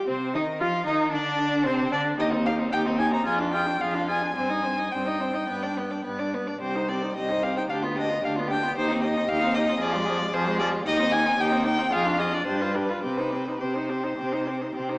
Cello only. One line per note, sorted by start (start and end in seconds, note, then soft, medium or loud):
0.08 0.36 C3 medium
0.34 0.62 D#3 medium
0.61 0.86 F3 medium
0.87 1.15 D#3 medium
1.13 1.67 D3 medium
1.66 1.92 C3 medium
1.92 2.18 D3 medium
2.18 2.66 D#2 medium
2.72 3.20 D#2 medium
3.26 3.74 F2 medium
3.80 4.30 F2 medium
4.36 4.86 G2 medium
4.92 5.42 G2 medium
5.48 5.98 G2 medium
6.05 6.54 G2 medium
6.60 7.09 C2 medium
7.15 7.63 C2 medium
7.69 8.17 D2 medium
8.24 8.70 D2 medium
8.77 9.23 D#2 medium
9.29 9.75 D#2 medium
9.81 10.27 F2 medium
10.33 10.79 F2 medium
10.86 11.32 D#2 medium
11.38 11.85 D#2 medium
11.91 12.40 F2 medium
12.46 12.96 G2 medium
13.03 13.53 C3 medium
13.60 14.11 C3 medium
14.17 14.68 C3 medium
14.75 14.98 C3 medium